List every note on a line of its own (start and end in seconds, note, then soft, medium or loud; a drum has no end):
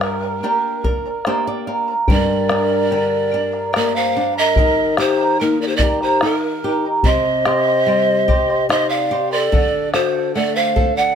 0.00 0.40 G2 medium
0.00 1.26 A#4 medium
0.00 0.22 A#4 medium
0.00 0.22 D5 medium
0.00 0.22 G5 medium
0.00 0.21 A#5 medium
0.00 bombo rim medium
0.22 0.42 A#4 soft
0.22 0.42 D5 soft
0.22 0.43 A#5 medium
0.43 1.09 A#3 soft
0.43 1.10 D4 soft
0.43 0.84 G4 medium
0.43 0.84 A#4 medium
0.43 0.84 D5 medium
0.43 0.83 G5 medium
0.43 0.85 A#5 medium
0.84 1.23 A#4 medium
0.84 1.05 A#4 medium
0.84 1.05 D5 medium
0.84 1.05 G5 medium
0.84 1.04 A#5 medium
0.84 bombo rim soft
0.84 bombo low medium
1.05 1.25 A#4 soft
1.05 1.25 D5 soft
1.05 1.26 A#5 medium
1.25 1.93 A#3 soft
1.25 1.93 D4 soft
1.25 1.67 G4 medium
1.25 1.93 G4 medium
1.25 1.67 A#4 medium
1.25 1.45 C5 medium
1.25 1.67 D5 medium
1.25 1.66 G5 medium
1.25 1.68 A#5 medium
1.25 bombo rim medium
1.46 1.66 D5 medium
1.46 bombo rim soft
1.67 1.87 A#4 medium
1.67 1.87 D5 medium
1.67 2.06 F5 medium
1.67 1.88 G5 medium
1.67 1.87 A#5 medium
1.67 bombo rim soft
1.88 2.07 A#4 soft
1.88 2.08 D5 soft
1.88 2.07 A#5 medium
2.08 4.53 G2 medium
2.08 2.50 G4 medium
2.08 2.48 A#4 medium
2.08 3.71 A#4 medium
2.08 2.48 D5 medium
2.08 3.71 D5 medium
2.08 2.47 G5 medium
2.08 2.49 A#5 medium
2.08 bombo low medium
2.49 2.90 D4 medium
2.49 2.70 A#4 medium
2.49 2.70 D5 medium
2.49 2.70 G5 medium
2.49 2.69 A#5 medium
2.49 bombo rim medium
2.70 2.89 A#4 soft
2.70 2.90 D5 soft
2.70 2.90 A#5 soft
2.91 3.32 D3 medium
2.91 3.32 G4 medium
2.91 3.30 A#4 medium
2.91 3.31 D5 medium
2.91 3.30 G5 medium
2.91 3.32 A#5 medium
3.31 3.73 D4 medium
3.31 3.52 A#4 medium
3.31 3.52 D5 medium
3.31 3.53 G5 medium
3.31 3.51 A#5 medium
3.52 3.72 A#4 soft
3.52 3.72 D5 soft
3.52 3.72 A#5 medium
3.52 bombo rim soft
3.73 4.15 A#3 medium
3.73 4.15 G4 medium
3.73 4.13 A#4 medium
3.73 3.94 A#4 medium
3.73 4.14 D5 medium
3.73 3.94 D5 medium
3.73 4.13 G5 medium
3.73 4.14 A#5 medium
3.73 bombo rim medium
3.95 4.34 C5 medium
3.95 4.33 F5 medium
4.14 4.56 D4 medium
4.14 4.36 A#4 medium
4.14 4.35 D5 medium
4.14 4.35 G5 medium
4.14 4.34 A#5 medium
4.36 4.56 A#4 soft
4.36 4.95 A#4 medium
4.36 4.57 D5 soft
4.36 4.95 D#5 medium
4.36 4.56 A#5 soft
4.56 7.02 D#3 medium
4.56 4.98 G4 medium
4.56 4.97 A#4 medium
4.56 4.98 D#5 medium
4.56 4.97 G5 medium
4.56 4.98 A#5 medium
4.56 bombo low medium
4.97 5.38 G4 medium
4.97 5.37 G4 medium
4.97 5.18 A#4 medium
4.97 5.37 C5 medium
4.97 5.18 D#5 medium
4.97 5.19 G5 medium
4.97 5.17 A#5 medium
4.97 bombo rim medium
5.18 5.39 A#4 soft
5.18 5.39 D#5 soft
5.18 5.39 A#5 soft
5.39 5.80 A#3 medium
5.39 5.59 D#4 medium
5.39 5.80 G4 medium
5.39 5.81 A#4 medium
5.39 5.59 A#4 medium
5.39 5.81 D#5 medium
5.39 5.81 G5 medium
5.39 5.81 A#5 medium
5.61 5.69 A#4 medium
5.61 5.69 D5 medium
5.67 5.76 G4 medium
5.67 5.77 C5 medium
5.75 6.02 A#4 medium
5.75 6.02 D5 medium
5.79 6.22 G4 soft
5.79 6.02 A#4 medium
5.79 6.02 D#5 medium
5.79 6.02 G5 medium
5.79 bombo low medium
5.83 6.01 A#5 medium
6.01 6.25 G4 medium
6.01 6.22 A#4 soft
6.01 6.24 C5 medium
6.01 6.22 D#5 soft
6.01 6.22 A#5 medium
6.01 bombo rim soft
6.21 6.62 D#4 medium
6.21 6.84 D#4 medium
6.21 6.63 G4 medium
6.21 6.35 A4 medium
6.21 6.64 A#4 medium
6.21 6.64 D#5 medium
6.21 6.64 G5 medium
6.21 6.64 A#5 medium
6.21 bombo rim medium
6.35 6.84 A#4 medium
6.64 7.04 G4 medium
6.64 6.85 A#4 medium
6.64 6.85 D#5 medium
6.64 6.85 G5 medium
6.64 6.84 A#5 medium
6.85 7.06 A#4 soft
6.85 7.05 D#5 soft
6.85 7.05 A#5 soft
7.03 9.48 C3 medium
7.03 7.46 G4 medium
7.03 8.66 C5 medium
7.03 7.45 C5 medium
7.03 8.66 D#5 loud
7.03 7.45 D#5 medium
7.03 7.45 G5 medium
7.03 7.46 C6 medium
7.03 bombo low medium
7.45 7.86 G4 medium
7.45 7.67 C5 medium
7.45 7.66 D#5 medium
7.45 7.66 G5 medium
7.45 7.65 C6 medium
7.45 bombo rim medium
7.66 7.87 C5 soft
7.66 7.87 D#5 soft
7.66 7.87 C6 soft
7.86 8.27 G3 medium
7.86 8.29 G4 medium
7.86 8.28 C5 medium
7.86 8.28 D#5 medium
7.86 8.27 G5 medium
7.86 8.28 C6 medium
8.28 8.68 G4 medium
8.28 8.49 C5 medium
8.28 8.49 D#5 medium
8.28 8.49 G5 medium
8.28 8.48 C6 medium
8.28 bombo low medium
8.49 8.69 C5 soft
8.49 8.69 D#5 medium
8.49 8.70 C6 soft
8.49 bombo rim soft
8.69 9.09 D#4 medium
8.69 9.11 G4 medium
8.69 9.11 C5 medium
8.69 8.92 C5 medium
8.69 8.90 D#5 medium
8.69 9.11 D#5 medium
8.69 9.10 G5 medium
8.69 9.12 C6 medium
8.69 bombo rim medium
8.89 8.96 D#5 medium
8.89 9.31 F5 medium
8.95 9.31 D5 medium
9.11 9.51 G4 medium
9.11 9.31 C5 medium
9.11 9.31 D#5 medium
9.11 9.32 G5 medium
9.11 9.30 C6 medium
9.31 9.37 A#4 medium
9.31 9.52 C5 soft
9.31 9.89 D5 medium
9.31 9.52 D#5 soft
9.31 9.52 C6 soft
9.36 9.89 A4 medium
9.52 11.15 D3 medium
9.52 9.93 A4 medium
9.52 9.94 D5 medium
9.52 9.94 F#5 medium
9.52 bombo low medium
9.93 10.33 F#4 medium
9.93 10.14 A4 medium
9.93 10.34 A4 soft
9.93 10.32 C5 medium
9.93 10.15 D5 medium
9.93 10.13 F#5 medium
9.93 bombo rim medium
10.14 10.34 D5 soft
10.14 10.34 F#5 medium
10.34 10.75 A3 medium
10.34 10.75 A4 medium
10.34 10.40 A#4 medium
10.34 10.76 D5 medium
10.34 10.57 D5 medium
10.34 10.76 F#5 medium
10.34 bombo rim soft
10.39 10.58 A4 medium
10.55 10.96 C5 medium
10.55 10.96 F5 medium
10.76 11.15 A4 medium
10.76 10.97 A4 medium
10.76 10.96 D5 medium
10.76 10.95 F#5 medium
10.76 bombo low medium
10.96 11.15 D5 medium
10.96 11.15 D5 soft
10.96 11.15 F#5 soft
10.96 11.15 F#5 medium